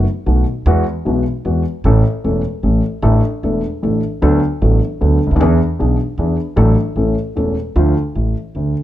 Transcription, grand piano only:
0.26 0.43 B1 medium
0.26 0.43 B2 medium
0.26 0.43 D#3 soft
0.26 0.43 A3 soft
0.26 0.43 B3 soft
0.26 0.43 F#4 soft
0.67 0.83 E2 medium
0.67 0.83 E3 medium
0.67 0.83 G#3 medium
0.67 0.83 B3 medium
0.67 0.83 F#4 medium
1.05 1.22 B1 medium
1.05 1.22 B2 medium
1.05 1.22 E3 soft
1.05 1.22 G#3 soft
1.05 1.22 B3 soft
1.05 1.22 F#4 soft
1.45 1.62 E2 soft
1.45 1.62 E3 soft
1.45 1.61 G#3 soft
1.45 1.62 B3 soft
1.45 1.62 F#4 soft
1.85 2.02 A1 medium
1.85 2.01 A2 medium
1.85 2.01 E3 medium
1.85 2.01 A3 medium
1.85 2.02 C#4 medium
1.85 2.02 A4 medium
2.24 2.41 E1 soft
2.24 2.41 E2 medium
2.24 2.41 E3 soft
2.24 2.41 A3 soft
2.24 2.41 C#4 soft
2.24 2.41 A4 soft
2.63 2.80 A1 soft
2.63 2.80 A2 soft
2.63 2.80 E3 soft
2.63 2.80 A3 soft
2.63 2.80 C#4 soft
2.63 2.80 A4 soft
3.03 3.20 A1 medium
3.03 3.20 A2 medium
3.03 3.20 E3 medium
3.03 3.20 A3 medium
3.03 3.20 D4 medium
3.03 3.20 A4 medium
3.44 3.60 E1 medium
3.44 3.60 E2 medium
3.44 3.60 E3 soft
3.44 3.60 A3 soft
3.44 3.60 D4 soft
3.44 3.60 A4 soft
3.82 3.99 A1 soft
3.82 3.99 A2 medium
3.82 3.99 E3 soft
3.82 3.99 A3 soft
3.82 4.00 D4 soft
3.82 4.00 A4 soft
4.22 4.39 D2 medium
4.22 4.39 D3 medium
4.22 4.39 F#3 medium
4.22 4.39 B3 medium
4.22 4.39 D4 medium
4.22 4.39 A4 medium
4.62 4.78 A1 medium
4.62 4.78 A2 medium
4.62 4.78 F#3 soft
4.62 4.78 B3 soft
4.62 4.79 D4 soft
4.62 4.79 A4 soft
5.01 5.18 D2 soft
5.01 5.18 D3 medium
5.01 5.18 F#3 soft
5.01 5.18 B3 soft
5.01 5.18 D4 soft
5.01 5.18 A4 soft
5.27 5.31 C#2 medium
5.31 5.36 D2 medium
5.36 5.41 D#2 medium
5.40 5.57 E2 medium
5.40 5.57 E3 medium
5.40 5.57 B3 medium
5.40 5.57 D4 medium
5.40 5.57 G#4 medium
5.79 5.96 B1 medium
5.79 5.96 B2 medium
5.79 5.96 E3 soft
5.79 5.96 B3 soft
5.79 5.96 D4 soft
5.79 5.96 G#4 medium
6.19 6.36 E2 soft
6.19 6.36 E3 soft
6.19 6.35 B3 soft
6.19 6.35 D4 soft
6.19 6.36 G#4 soft
6.56 6.74 A1 medium
6.56 6.74 A2 medium
6.56 6.74 F#3 medium
6.56 6.74 A3 medium
6.56 6.74 D4 medium
6.56 6.74 A4 medium
6.96 7.14 A1 medium
6.96 7.14 A2 medium
6.96 7.14 E3 soft
6.96 7.14 A3 soft
6.96 7.14 C#4 soft
6.96 7.14 A4 medium
7.35 7.54 E1 soft
7.35 7.54 E2 medium
7.35 7.53 E3 soft
7.35 7.53 A3 soft
7.35 7.54 C#4 soft
7.35 7.54 A4 soft
7.76 7.93 D2 medium
7.76 7.93 D3 medium
7.76 7.93 F3 medium
7.76 7.93 A3 medium
7.76 7.93 F4 medium
8.16 8.33 A1 soft
8.16 8.33 A2 soft
8.55 8.73 D2 soft
8.55 8.73 D3 soft

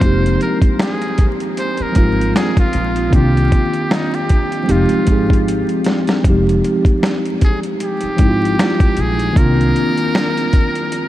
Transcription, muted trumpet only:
0.00 0.41 C5 medium
0.43 0.59 A#4 medium
0.81 1.29 G#4 medium
1.59 1.84 C5 medium
1.82 2.35 A#4 medium
2.36 2.56 G#4 medium
2.60 3.10 F4 medium
3.15 3.95 G4 medium
3.93 4.16 D#4 medium
4.15 4.73 G4 medium
4.71 5.48 F4 medium
7.44 7.60 G#4 medium
7.84 9.02 G4 medium
9.01 9.39 G#4 medium
9.38 11.08 A#4 loud

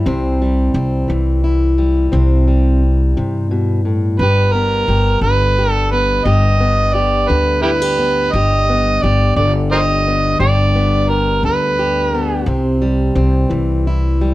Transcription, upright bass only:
0.06 0.71 C2 loud
0.74 1.06 C2 medium
1.10 2.09 C2 medium
2.13 3.12 C2 medium
3.17 4.16 G2 medium
4.19 4.85 G1 loud
4.88 5.20 G1 medium
5.21 6.22 G1 medium
6.25 7.26 G1 medium
7.30 8.29 D2 medium
8.33 8.98 G1 loud
9.03 9.35 G1 medium
9.36 10.36 G1 medium
10.40 11.40 G1 medium
11.43 12.43 D2 medium
12.46 13.11 C2 medium
13.15 13.47 C2 medium
13.51 14.34 C2 medium

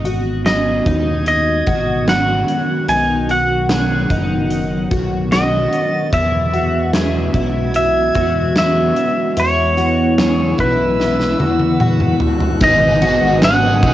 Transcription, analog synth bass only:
0.00 0.82 G#1 medium
0.86 1.63 D#2 medium
1.67 2.44 G#1 loud
2.88 4.06 B1 loud
4.10 4.87 F#1 medium
4.91 5.68 B1 medium
6.13 7.31 E2 loud
7.34 8.12 B1 medium
8.16 8.93 E2 medium
9.37 10.55 E2 loud
10.59 11.36 B1 loud
11.40 12.17 E2 medium
12.61 13.19 G#1 medium
13.22 13.85 G#1 loud
13.83 13.94 B1 loud

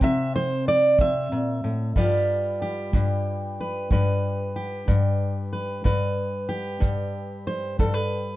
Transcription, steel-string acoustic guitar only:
0.02 0.98 C3 medium
0.02 0.35 E5 loud
0.36 0.67 C5 medium
0.68 1.00 D5 medium
0.99 1.32 C3 medium
0.99 3.60 E5 medium
1.32 1.63 A#2 medium
1.64 1.96 A2 medium
1.96 2.94 G2 medium
1.96 8.37 G3 soft
1.96 5.83 F4 soft
1.96 2.61 G4 soft
2.62 4.55 G4 soft
2.94 3.91 G2 medium
3.60 3.92 B4 soft
3.91 4.87 G2 medium
3.91 5.51 B4 soft
4.56 5.82 G4 soft
4.88 5.83 G2 medium
5.53 5.82 B4 soft
5.84 6.79 G2 medium
5.84 7.47 B4 medium
6.49 8.37 G4 medium
6.80 7.78 G2 medium
7.47 7.79 C5 medium
7.79 8.37 G2 medium
7.79 7.94 A4 medium
7.94 8.37 B4 soft

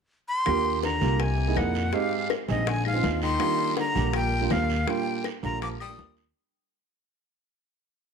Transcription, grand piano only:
0.46 0.85 A#3 medium
0.46 0.85 D4 medium
0.46 0.85 F4 medium
0.46 0.85 G4 medium
1.01 1.20 A#3 medium
1.01 1.20 D4 medium
1.01 1.20 F4 medium
1.01 1.20 G4 medium
1.47 1.79 A#3 medium
1.47 1.80 D#4 medium
1.47 1.80 E4 medium
1.47 1.80 G#4 medium
1.93 2.32 G#3 medium
1.93 2.32 C4 medium
1.93 2.32 D#4 medium
1.93 2.32 G4 medium
2.48 2.67 G#3 medium
2.48 2.67 C4 medium
2.48 2.67 D#4 medium
2.48 2.67 G#4 medium
2.94 3.26 G#3 medium
2.94 3.27 C4 medium
2.94 3.27 D4 medium
2.94 3.27 F4 medium
3.39 3.79 G3 medium
3.39 3.79 A#3 medium
3.39 3.79 D4 medium
3.39 3.79 F4 medium
3.95 4.27 G3 medium
3.95 4.28 A#3 medium
3.95 4.28 D4 medium
3.95 4.28 G4 medium
4.41 4.73 G3 medium
4.41 4.74 A#3 medium
4.41 4.74 D4 medium
4.41 4.74 F4 medium
4.87 5.26 G3 medium
4.87 5.26 A#3 medium
4.87 5.26 D4 medium
4.87 5.26 F4 medium
5.43 5.75 G3 medium
5.43 5.75 A#3 medium
5.43 5.75 D4 medium
5.43 5.75 F4 medium
5.89 6.21 G3 medium
5.89 6.21 A#3 medium
5.89 6.22 D4 medium
5.89 6.22 F4 medium

